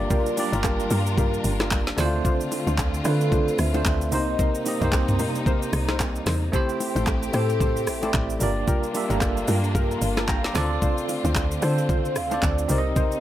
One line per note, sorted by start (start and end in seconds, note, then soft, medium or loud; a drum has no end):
0.00 1.96 G3 medium
0.00 0.31 A#3 medium
0.00 0.28 D4 medium
0.00 1.96 D4 medium
0.00 0.29 F4 medium
0.00 1.96 F4 medium
0.00 0.29 G4 medium
0.00 1.96 A#4 medium
0.00 0.30 D5 medium
0.00 0.50 D5 medium
0.00 downlifter medium
0.10 0.49 F4 loud
0.10 0.49 G4 medium
0.10 0.49 A#4 loud
0.10 kick loud
0.10 low conga medium
0.10 shaker medium
0.26 shaker medium
0.36 0.49 A#3 medium
0.36 0.50 D4 medium
0.36 0.50 F4 medium
0.36 0.51 G4 medium
0.36 0.51 D5 medium
0.36 open hi-hat medium
0.36 low bongo medium
0.36 shaker medium
0.52 0.87 G1 medium
0.52 1.37 A#3 medium
0.52 1.38 D4 medium
0.52 0.60 F4 medium
0.52 1.38 F4 medium
0.52 0.60 G4 medium
0.52 1.39 G4 medium
0.52 0.60 A#4 medium
0.52 1.39 A#4 medium
0.52 low bongo medium
0.52 shaker medium
0.64 kick loud
0.64 clap loud
0.64 high bongo medium
0.64 shaker medium
0.80 shaker medium
0.90 1.39 G2 loud
0.90 1.01 F4 medium
0.90 1.01 G4 medium
0.90 1.01 A#4 medium
0.90 open hi-hat medium
0.90 low bongo medium
0.90 shaker medium
1.07 shaker medium
1.17 1.56 F4 loud
1.17 1.56 G4 medium
1.17 1.56 A#4 loud
1.17 kick loud
1.17 high bongo medium
1.17 low conga medium
1.17 shaker medium
1.34 shaker medium
1.44 1.93 G1 medium
1.44 open hi-hat medium
1.44 shaker medium
1.60 1.67 F4 medium
1.60 1.67 G4 medium
1.60 1.68 A#4 medium
1.60 cross-stick loud
1.60 snare medium
1.60 low bongo medium
1.60 shaker medium
1.71 kick loud
1.71 clap loud
1.71 high bongo medium
1.71 shaker medium
1.87 snare medium
1.87 shaker medium
1.97 2.22 D2 loud
1.97 4.10 D3 medium
1.97 2.84 A3 loud
1.97 4.10 A3 medium
1.97 2.84 C4 medium
1.97 4.10 C4 medium
1.97 2.08 D4 medium
1.97 2.85 D4 medium
1.97 2.06 E4 medium
1.97 4.10 F4 medium
1.97 2.08 F4 medium
1.97 2.08 C5 medium
1.97 2.86 C5 loud
1.97 cross-stick loud
1.97 snare medium
1.97 open hi-hat medium
1.97 low conga medium
1.97 shaker loud
2.06 2.89 F4 medium
2.25 2.63 D4 loud
2.25 2.63 F4 medium
2.25 2.64 C5 loud
2.25 kick loud
2.25 low conga medium
2.25 shaker medium
2.41 shaker medium
2.52 open hi-hat medium
2.52 low bongo medium
2.52 shaker medium
2.67 3.01 D2 loud
2.67 2.74 D4 medium
2.67 2.74 F4 medium
2.67 2.75 C5 medium
2.67 low bongo medium
2.67 shaker medium
2.78 kick medium
2.78 clap loud
2.78 high bongo medium
2.78 shaker medium
2.94 shaker medium
3.04 3.53 D3 loud
3.04 3.58 A3 medium
3.04 3.59 C4 medium
3.04 3.15 D4 medium
3.04 3.59 D4 medium
3.04 3.15 F4 medium
3.04 3.60 F4 medium
3.04 3.62 A4 loud
3.04 3.60 B4 medium
3.04 3.15 C5 medium
3.04 cross-stick loud
3.04 open hi-hat medium
3.04 low bongo medium
3.04 shaker medium
3.21 shaker medium
3.32 3.70 D4 loud
3.32 3.71 F4 medium
3.32 3.71 C5 loud
3.32 kick loud
3.32 high bongo medium
3.32 low conga medium
3.32 shaker medium
3.48 shaker medium
3.58 3.83 D2 loud
3.58 4.15 E5 loud
3.58 cross-stick loud
3.58 open hi-hat medium
3.58 shaker medium
3.73 4.12 A3 medium
3.73 4.11 C4 medium
3.73 3.82 D4 medium
3.73 4.13 D4 medium
3.73 3.82 F4 medium
3.73 4.13 F4 medium
3.73 3.82 C5 medium
3.73 4.14 C5 medium
3.73 low bongo medium
3.73 shaker medium
3.85 4.14 D2 loud
3.85 kick loud
3.85 clap loud
3.85 high bongo medium
3.85 shaker medium
4.01 shaker medium
4.11 4.36 C2 loud
4.11 6.51 C3 medium
4.11 6.51 G3 medium
4.11 4.56 A#3 medium
4.11 6.51 A#3 medium
4.11 4.57 C4 medium
4.11 4.22 D#4 medium
4.11 6.51 D#4 medium
4.11 4.57 D#4 medium
4.11 4.58 G4 medium
4.11 4.23 A#4 medium
4.11 4.23 C5 medium
4.11 4.58 C5 medium
4.11 4.29 D#5 loud
4.11 open hi-hat medium
4.11 low conga medium
4.11 shaker loud
4.29 4.79 D#5 loud
4.39 4.78 D#4 loud
4.39 4.78 A#4 medium
4.39 4.78 C5 loud
4.39 kick loud
4.39 low conga medium
4.39 shaker medium
4.55 shaker medium
4.65 4.78 A#3 medium
4.65 4.78 C4 medium
4.65 4.79 D#4 medium
4.65 4.79 G4 medium
4.65 4.80 D#5 medium
4.65 open hi-hat medium
4.65 low bongo medium
4.65 shaker medium
4.80 5.21 C2 loud
4.80 5.66 A#3 medium
4.80 5.66 C4 medium
4.80 4.89 D#4 medium
4.80 5.67 D#4 medium
4.80 5.67 G4 medium
4.80 4.89 A#4 medium
4.80 4.89 C5 medium
4.80 5.68 C5 medium
4.80 mid tom medium
4.80 low bongo medium
4.80 shaker medium
4.92 kick medium
4.92 clap loud
4.92 high bongo medium
4.92 shaker medium
5.08 mid tom loud
5.08 shaker medium
5.19 5.68 C3 loud
5.19 5.30 D#4 medium
5.19 5.30 A#4 medium
5.19 5.30 C5 medium
5.19 open hi-hat medium
5.19 low bongo medium
5.19 shaker medium
5.35 high bongo medium
5.35 shaker medium
5.46 5.85 D#4 loud
5.46 5.85 A#4 medium
5.46 5.85 C5 loud
5.46 kick loud
5.46 high bongo medium
5.46 low conga medium
5.46 shaker medium
5.62 shaker medium
5.73 6.21 C2 loud
5.73 cross-stick medium
5.73 open hi-hat medium
5.73 shaker medium
5.88 5.96 D#4 medium
5.88 5.96 A#4 medium
5.88 5.96 C5 medium
5.88 cross-stick loud
5.88 snare medium
5.88 low bongo medium
5.88 shaker medium
6.00 kick loud
6.00 clap loud
6.00 high bongo medium
6.00 shaker medium
6.16 shaker medium
6.26 6.51 E2 loud
6.26 6.37 D#4 medium
6.26 6.37 A#4 medium
6.26 6.37 C5 medium
6.26 cross-stick loud
6.26 snare medium
6.26 open hi-hat medium
6.26 low conga medium
6.26 shaker loud
6.52 7.19 A3 loud
6.52 8.39 A3 medium
6.52 7.19 C4 medium
6.52 8.39 C4 medium
6.52 7.20 E4 medium
6.52 6.92 G4 loud
6.52 8.39 G4 medium
6.52 7.20 G4 medium
6.52 6.92 A4 medium
6.52 6.92 C5 loud
6.52 7.21 C5 loud
6.52 kick loud
6.52 low conga medium
6.52 shaker medium
6.69 shaker medium
6.80 open hi-hat medium
6.80 low bongo medium
6.80 shaker medium
6.95 7.30 A1 loud
6.95 7.03 G4 medium
6.95 7.03 A4 medium
6.95 7.03 C5 medium
6.95 low bongo medium
6.95 shaker medium
7.07 kick loud
7.07 clap medium
7.07 high bongo medium
7.07 shaker medium
7.23 shaker medium
7.32 7.89 A2 loud
7.32 7.87 A3 medium
7.32 7.87 C4 medium
7.32 7.88 E4 medium
7.32 7.44 G4 medium
7.32 7.88 G4 medium
7.32 7.44 A4 medium
7.32 7.90 A4 loud
7.32 7.44 C5 medium
7.32 7.89 C5 medium
7.32 cross-stick loud
7.32 open hi-hat medium
7.32 low bongo medium
7.32 shaker medium
7.50 shaker medium
7.60 7.99 G4 loud
7.60 7.99 A4 medium
7.60 7.99 C5 loud
7.60 kick loud
7.60 high bongo medium
7.60 low conga medium
7.60 shaker medium
7.77 shaker medium
7.87 8.11 A1 loud
7.87 8.44 E5 loud
7.87 cross-stick medium
7.87 open hi-hat medium
7.87 shaker medium
8.01 8.40 A3 medium
8.01 8.41 C4 medium
8.01 8.41 E4 medium
8.01 8.10 G4 medium
8.01 8.41 G4 medium
8.01 8.10 A4 medium
8.01 8.10 C5 medium
8.01 8.42 D5 medium
8.01 low bongo medium
8.01 shaker medium
8.14 8.38 A1 loud
8.14 kick loud
8.14 clap loud
8.14 high bongo medium
8.14 shaker medium
8.30 shaker medium
8.39 8.65 G1 loud
8.39 10.53 G3 medium
8.39 8.85 A#3 medium
8.39 10.53 A#3 medium
8.39 8.85 D4 medium
8.39 10.53 D4 medium
8.39 8.51 F4 medium
8.39 12.66 F4 medium
8.39 8.86 F4 medium
8.39 8.51 G4 medium
8.39 8.86 G4 medium
8.39 8.51 A#4 medium
8.39 8.57 D5 loud
8.39 8.87 D5 medium
8.39 open hi-hat medium
8.39 low conga medium
8.39 shaker loud
8.58 9.07 D5 medium
8.67 9.06 F4 loud
8.67 9.06 G4 medium
8.67 9.06 A#4 loud
8.67 kick loud
8.67 low conga medium
8.67 shaker medium
8.83 shaker medium
8.93 9.06 A#3 medium
8.93 9.07 D4 medium
8.93 9.07 F4 medium
8.93 9.08 G4 medium
8.93 9.08 E5 medium
8.93 open hi-hat medium
8.93 low bongo medium
8.93 shaker medium
9.09 9.44 G1 loud
9.09 9.94 A#3 medium
9.09 9.95 D4 medium
9.09 9.17 F4 medium
9.09 9.95 F4 medium
9.09 9.17 G4 medium
9.09 9.96 G4 medium
9.09 9.96 A4 medium
9.09 9.18 A#4 medium
9.09 low bongo medium
9.09 shaker medium
9.21 kick loud
9.21 clap medium
9.21 high bongo medium
9.21 shaker medium
9.37 shaker medium
9.48 9.96 G2 loud
9.48 9.58 F4 medium
9.48 9.58 G4 medium
9.48 9.58 A#4 medium
9.48 open hi-hat medium
9.48 low bongo medium
9.48 shaker medium
9.64 shaker medium
9.75 10.13 F4 loud
9.75 10.14 G4 medium
9.75 10.14 A#4 loud
9.75 kick loud
9.75 high bongo medium
9.75 low conga medium
9.75 shaker medium
9.91 shaker medium
10.02 10.50 G1 loud
10.02 open hi-hat medium
10.02 shaker medium
10.17 10.24 F4 medium
10.17 10.25 G4 medium
10.17 10.25 A#4 medium
10.17 10.28 F5 medium
10.17 10.28 A5 medium
10.17 cross-stick loud
10.17 snare medium
10.17 low bongo medium
10.17 shaker medium
10.28 10.44 G5 medium
10.28 10.44 A#5 medium
10.28 kick loud
10.28 clap loud
10.28 high bongo medium
10.28 shaker medium
10.44 10.70 A#5 medium
10.44 10.70 D6 medium
10.44 snare medium
10.44 shaker medium
10.54 10.79 D2 loud
10.54 12.67 D3 medium
10.54 12.67 A3 medium
10.54 11.41 C4 loud
10.54 12.67 C4 medium
10.54 11.42 D4 medium
10.54 10.65 D4 medium
10.54 10.65 F4 medium
10.54 11.42 F4 medium
10.54 11.42 A4 medium
10.54 10.65 C5 medium
10.54 11.43 D5 loud
10.54 cross-stick loud
10.54 snare medium
10.54 open hi-hat medium
10.54 low conga medium
10.54 shaker loud
10.82 11.21 D4 medium
10.82 11.21 F4 medium
10.82 11.21 C5 loud
10.82 kick loud
10.82 low conga medium
10.82 shaker medium
10.98 shaker medium
11.09 open hi-hat medium
11.09 low bongo medium
11.09 shaker medium
11.24 11.59 D2 loud
11.24 11.32 D4 medium
11.24 11.32 F4 medium
11.24 11.32 C5 medium
11.24 low bongo medium
11.24 shaker medium
11.35 kick loud
11.35 clap medium
11.35 high bongo medium
11.35 shaker medium
11.51 shaker medium
11.61 12.17 D3 loud
11.61 12.15 C4 medium
11.61 12.16 D4 medium
11.61 11.72 D4 medium
11.61 11.73 F4 medium
11.61 12.16 F4 medium
11.61 12.17 A4 medium
11.61 11.73 C5 medium
11.61 12.19 C5 loud
11.61 12.17 C5 medium
11.61 cross-stick loud
11.61 open hi-hat medium
11.61 low bongo medium
11.61 shaker medium
11.78 shaker medium
11.89 12.28 D4 loud
11.89 12.28 F4 medium
11.89 12.28 C5 loud
11.89 kick loud
11.89 high bongo medium
11.89 low conga medium
11.89 shaker medium
12.05 shaker medium
12.16 12.40 D2 medium
12.16 12.46 F5 loud
12.16 cross-stick medium
12.16 open hi-hat medium
12.16 shaker medium
12.30 12.67 C4 medium
12.30 12.69 D4 medium
12.30 12.39 D4 medium
12.30 12.39 F4 medium
12.30 12.70 F4 medium
12.30 12.70 A4 medium
12.30 12.39 C5 medium
12.30 12.71 D5 medium
12.30 low bongo medium
12.30 shaker medium
12.43 12.67 D2 loud
12.43 12.73 D5 loud
12.43 kick loud
12.43 clap loud
12.43 high bongo medium
12.43 shaker medium
12.58 shaker medium
12.68 12.94 C2 loud
12.68 13.20 C3 medium
12.68 13.20 G3 medium
12.68 13.20 A#3 medium
12.68 13.13 C4 medium
12.68 13.14 D#4 medium
12.68 12.79 D#4 medium
12.68 13.20 D#4 medium
12.68 13.14 G4 medium
12.68 12.80 A#4 medium
12.68 13.15 A#4 medium
12.68 12.80 C5 medium
12.68 12.78 D5 medium
12.68 13.20 D#5 loud
12.68 open hi-hat medium
12.68 low conga medium
12.68 shaker loud
12.78 13.18 D#5 medium
12.96 13.20 D#4 loud
12.96 13.20 A#4 medium
12.96 13.20 C5 loud
12.96 kick loud
12.96 low conga medium
12.96 shaker medium
13.12 shaker medium